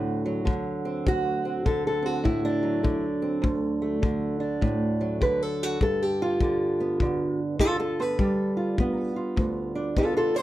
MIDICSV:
0, 0, Header, 1, 3, 480
1, 0, Start_track
1, 0, Tempo, 593472
1, 857, Time_signature, 4, 2, 24, 8
1, 8430, End_track
2, 0, Start_track
2, 0, Title_t, "Steel-string acoustic guitar"
2, 0, Program_c, 0, 25
2, 0, Note_on_c, 0, 38, 75
2, 0, Note_on_c, 0, 45, 63
2, 0, Note_on_c, 0, 50, 65
2, 0, Note_on_c, 0, 54, 52
2, 0, Note_on_c, 0, 60, 49
2, 0, Note_on_c, 0, 66, 45
2, 203, Note_off_c, 0, 54, 0
2, 207, Note_on_c, 0, 54, 52
2, 361, Note_off_c, 0, 50, 0
2, 365, Note_on_c, 0, 50, 67
2, 374, Note_off_c, 0, 45, 0
2, 685, Note_off_c, 0, 60, 0
2, 689, Note_on_c, 0, 60, 50
2, 858, Note_off_c, 0, 38, 0
2, 861, Note_on_c, 0, 38, 76
2, 872, Note_off_c, 0, 66, 0
2, 875, Note_on_c, 0, 66, 117
2, 886, Note_off_c, 0, 60, 0
2, 1174, Note_on_c, 0, 60, 47
2, 1335, Note_off_c, 0, 50, 0
2, 1338, Note_on_c, 0, 50, 69
2, 1346, Note_off_c, 0, 66, 0
2, 1351, Note_on_c, 0, 69, 81
2, 1502, Note_off_c, 0, 69, 0
2, 1512, Note_on_c, 0, 69, 79
2, 1635, Note_off_c, 0, 60, 0
2, 1638, Note_on_c, 0, 60, 47
2, 1664, Note_off_c, 0, 69, 0
2, 1664, Note_on_c, 0, 66, 83
2, 1809, Note_on_c, 0, 45, 72
2, 1815, Note_off_c, 0, 60, 0
2, 1818, Note_on_c, 0, 64, 81
2, 1977, Note_off_c, 0, 66, 0
2, 1980, Note_on_c, 0, 62, 87
2, 2115, Note_off_c, 0, 54, 0
2, 2125, Note_on_c, 0, 54, 49
2, 2281, Note_off_c, 0, 50, 0
2, 2291, Note_on_c, 0, 50, 62
2, 2294, Note_off_c, 0, 45, 0
2, 2458, Note_off_c, 0, 64, 0
2, 2606, Note_on_c, 0, 60, 50
2, 2754, Note_off_c, 0, 38, 0
2, 2758, Note_off_c, 0, 60, 0
2, 2764, Note_on_c, 0, 38, 76
2, 3088, Note_on_c, 0, 57, 45
2, 3244, Note_off_c, 0, 50, 0
2, 3254, Note_on_c, 0, 50, 69
2, 3549, Note_off_c, 0, 62, 0
2, 3559, Note_on_c, 0, 62, 49
2, 3731, Note_on_c, 0, 45, 71
2, 4040, Note_off_c, 0, 54, 0
2, 4050, Note_on_c, 0, 54, 50
2, 4202, Note_off_c, 0, 50, 0
2, 4212, Note_on_c, 0, 50, 63
2, 4215, Note_off_c, 0, 45, 0
2, 4222, Note_off_c, 0, 62, 0
2, 4225, Note_on_c, 0, 71, 88
2, 4387, Note_off_c, 0, 71, 0
2, 4387, Note_on_c, 0, 69, 94
2, 4553, Note_off_c, 0, 57, 0
2, 4553, Note_on_c, 0, 66, 84
2, 4692, Note_off_c, 0, 38, 0
2, 4701, Note_off_c, 0, 69, 0
2, 4702, Note_off_c, 0, 54, 0
2, 4705, Note_on_c, 0, 43, 70
2, 4706, Note_off_c, 0, 66, 0
2, 4711, Note_on_c, 0, 69, 96
2, 4873, Note_off_c, 0, 69, 0
2, 4873, Note_on_c, 0, 67, 77
2, 5031, Note_on_c, 0, 65, 86
2, 5175, Note_off_c, 0, 50, 0
2, 5188, Note_on_c, 0, 50, 62
2, 5503, Note_on_c, 0, 59, 46
2, 5506, Note_off_c, 0, 67, 0
2, 5666, Note_off_c, 0, 50, 0
2, 5676, Note_on_c, 0, 50, 68
2, 5985, Note_off_c, 0, 65, 0
2, 6134, Note_off_c, 0, 50, 0
2, 6144, Note_on_c, 0, 50, 64
2, 6147, Note_on_c, 0, 65, 96
2, 6151, Note_on_c, 0, 69, 107
2, 6295, Note_off_c, 0, 65, 0
2, 6297, Note_off_c, 0, 69, 0
2, 6308, Note_on_c, 0, 69, 89
2, 6453, Note_off_c, 0, 59, 0
2, 6467, Note_on_c, 0, 59, 49
2, 6470, Note_off_c, 0, 69, 0
2, 6470, Note_on_c, 0, 71, 92
2, 6600, Note_off_c, 0, 43, 0
2, 6609, Note_off_c, 0, 59, 0
2, 6626, Note_on_c, 0, 55, 76
2, 6630, Note_on_c, 0, 62, 52
2, 6930, Note_on_c, 0, 65, 48
2, 7100, Note_off_c, 0, 50, 0
2, 7114, Note_on_c, 0, 59, 69
2, 7401, Note_off_c, 0, 65, 0
2, 7410, Note_on_c, 0, 65, 46
2, 7422, Note_off_c, 0, 71, 0
2, 7573, Note_on_c, 0, 38, 71
2, 7886, Note_off_c, 0, 62, 0
2, 7889, Note_on_c, 0, 62, 50
2, 8050, Note_off_c, 0, 59, 0
2, 8060, Note_off_c, 0, 65, 0
2, 8060, Note_on_c, 0, 59, 60
2, 8069, Note_on_c, 0, 65, 88
2, 8073, Note_on_c, 0, 69, 92
2, 8213, Note_off_c, 0, 65, 0
2, 8218, Note_off_c, 0, 69, 0
2, 8223, Note_on_c, 0, 65, 89
2, 8228, Note_on_c, 0, 69, 92
2, 8364, Note_off_c, 0, 62, 0
2, 8368, Note_on_c, 0, 62, 51
2, 8379, Note_off_c, 0, 65, 0
2, 8379, Note_off_c, 0, 69, 0
2, 8379, Note_on_c, 0, 72, 99
2, 8430, Note_off_c, 0, 38, 0
2, 8430, Note_off_c, 0, 55, 0
2, 8430, Note_off_c, 0, 59, 0
2, 8430, Note_off_c, 0, 62, 0
2, 8430, Note_off_c, 0, 72, 0
2, 8430, End_track
3, 0, Start_track
3, 0, Title_t, "Drums"
3, 380, Note_on_c, 9, 36, 66
3, 461, Note_off_c, 9, 36, 0
3, 862, Note_on_c, 9, 36, 70
3, 943, Note_off_c, 9, 36, 0
3, 1342, Note_on_c, 9, 36, 69
3, 1423, Note_off_c, 9, 36, 0
3, 1823, Note_on_c, 9, 36, 64
3, 1904, Note_off_c, 9, 36, 0
3, 2301, Note_on_c, 9, 36, 62
3, 2382, Note_off_c, 9, 36, 0
3, 2780, Note_on_c, 9, 36, 64
3, 2861, Note_off_c, 9, 36, 0
3, 3259, Note_on_c, 9, 36, 70
3, 3340, Note_off_c, 9, 36, 0
3, 3739, Note_on_c, 9, 36, 64
3, 3819, Note_off_c, 9, 36, 0
3, 4219, Note_on_c, 9, 36, 62
3, 4300, Note_off_c, 9, 36, 0
3, 4699, Note_on_c, 9, 36, 69
3, 4780, Note_off_c, 9, 36, 0
3, 5181, Note_on_c, 9, 36, 66
3, 5261, Note_off_c, 9, 36, 0
3, 5663, Note_on_c, 9, 36, 65
3, 5744, Note_off_c, 9, 36, 0
3, 6143, Note_on_c, 9, 36, 67
3, 6224, Note_off_c, 9, 36, 0
3, 6623, Note_on_c, 9, 36, 68
3, 6704, Note_off_c, 9, 36, 0
3, 7104, Note_on_c, 9, 36, 68
3, 7184, Note_off_c, 9, 36, 0
3, 7581, Note_on_c, 9, 36, 68
3, 7662, Note_off_c, 9, 36, 0
3, 8060, Note_on_c, 9, 36, 67
3, 8141, Note_off_c, 9, 36, 0
3, 8430, End_track
0, 0, End_of_file